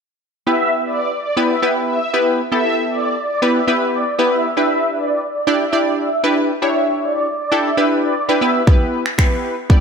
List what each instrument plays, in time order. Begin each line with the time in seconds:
0.46 analog polysynth B3 E4 G4 B4, supersaw synth E5
0.85 supersaw synth D5
1.24 supersaw synth D5
1.37 analog polysynth B3 E4 G4 B4
1.49 supersaw synth E5
1.62 analog polysynth B3 E4 G4 B4
1.88 supersaw synth E5
2.14 analog polysynth B3 E4 G4 B4
2.52 analog polysynth B3 E4 G4 A4, supersaw synth E5
2.91 supersaw synth D5
3.29 supersaw synth D5
3.42 analog polysynth B3 E4 G4 B4
3.55 supersaw synth E5
3.67 analog polysynth B3 E4 G4 B4
3.93 supersaw synth D5
4.19 analog polysynth B3 E4 G4 B4
4.32 supersaw synth E5
4.57 analog polysynth D4 E4 G4 B4, supersaw synth E5
4.96 supersaw synth D5
5.34 supersaw synth D5
5.47 analog polysynth D4 E4 G4 D5
5.60 supersaw synth E5
5.72 analog polysynth D4 E4 G4 D5
5.98 supersaw synth E5
6.24 analog polysynth D4 E4 G4 B4
6.62 analog polysynth D4 E4 G4 C#5, supersaw synth E5
7.01 supersaw synth D5
7.39 supersaw synth D5
7.52 analog polysynth D4 E4 G4 A4
7.65 supersaw synth E5
7.77 analog polysynth D4 E4 G4 B4
8.03 supersaw synth D5
8.29 analog polysynth D4 E4 G4 B4
8.41 analog polysynth B3 E4 G4 B4, supersaw synth E5
8.67 analog polysynth B3 E4 G4 B4, kick
9.06 finger snap
9.18 analog polysynth B3 E4 G4 B4, finger snap, kick
9.70 analog polysynth B3 E4 G4 D5, kick